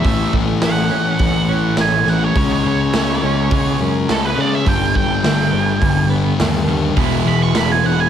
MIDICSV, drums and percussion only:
0, 0, Header, 1, 2, 480
1, 0, Start_track
1, 0, Tempo, 577478
1, 41, Time_signature, 4, 2, 24, 8
1, 6728, End_track
2, 0, Start_track
2, 0, Title_t, "Drums"
2, 36, Note_on_c, 9, 46, 58
2, 38, Note_on_c, 9, 36, 103
2, 119, Note_off_c, 9, 46, 0
2, 121, Note_off_c, 9, 36, 0
2, 276, Note_on_c, 9, 36, 75
2, 359, Note_off_c, 9, 36, 0
2, 512, Note_on_c, 9, 46, 59
2, 514, Note_on_c, 9, 38, 109
2, 595, Note_off_c, 9, 46, 0
2, 597, Note_off_c, 9, 38, 0
2, 988, Note_on_c, 9, 46, 50
2, 994, Note_on_c, 9, 36, 101
2, 1071, Note_off_c, 9, 46, 0
2, 1077, Note_off_c, 9, 36, 0
2, 1470, Note_on_c, 9, 46, 50
2, 1472, Note_on_c, 9, 38, 110
2, 1553, Note_off_c, 9, 46, 0
2, 1555, Note_off_c, 9, 38, 0
2, 1718, Note_on_c, 9, 38, 30
2, 1801, Note_off_c, 9, 38, 0
2, 1958, Note_on_c, 9, 36, 109
2, 1958, Note_on_c, 9, 46, 51
2, 2041, Note_off_c, 9, 36, 0
2, 2042, Note_off_c, 9, 46, 0
2, 2439, Note_on_c, 9, 46, 53
2, 2440, Note_on_c, 9, 38, 113
2, 2522, Note_off_c, 9, 46, 0
2, 2523, Note_off_c, 9, 38, 0
2, 2920, Note_on_c, 9, 36, 106
2, 2923, Note_on_c, 9, 46, 53
2, 3003, Note_off_c, 9, 36, 0
2, 3006, Note_off_c, 9, 46, 0
2, 3400, Note_on_c, 9, 46, 54
2, 3401, Note_on_c, 9, 38, 106
2, 3483, Note_off_c, 9, 46, 0
2, 3485, Note_off_c, 9, 38, 0
2, 3877, Note_on_c, 9, 36, 113
2, 3877, Note_on_c, 9, 46, 55
2, 3960, Note_off_c, 9, 46, 0
2, 3961, Note_off_c, 9, 36, 0
2, 4117, Note_on_c, 9, 36, 67
2, 4200, Note_off_c, 9, 36, 0
2, 4358, Note_on_c, 9, 46, 55
2, 4359, Note_on_c, 9, 38, 98
2, 4441, Note_off_c, 9, 46, 0
2, 4442, Note_off_c, 9, 38, 0
2, 4835, Note_on_c, 9, 36, 107
2, 4835, Note_on_c, 9, 46, 49
2, 4918, Note_off_c, 9, 36, 0
2, 4918, Note_off_c, 9, 46, 0
2, 5316, Note_on_c, 9, 46, 57
2, 5318, Note_on_c, 9, 38, 103
2, 5399, Note_off_c, 9, 46, 0
2, 5401, Note_off_c, 9, 38, 0
2, 5792, Note_on_c, 9, 36, 110
2, 5792, Note_on_c, 9, 46, 56
2, 5875, Note_off_c, 9, 46, 0
2, 5876, Note_off_c, 9, 36, 0
2, 6273, Note_on_c, 9, 46, 59
2, 6275, Note_on_c, 9, 38, 107
2, 6356, Note_off_c, 9, 46, 0
2, 6358, Note_off_c, 9, 38, 0
2, 6728, End_track
0, 0, End_of_file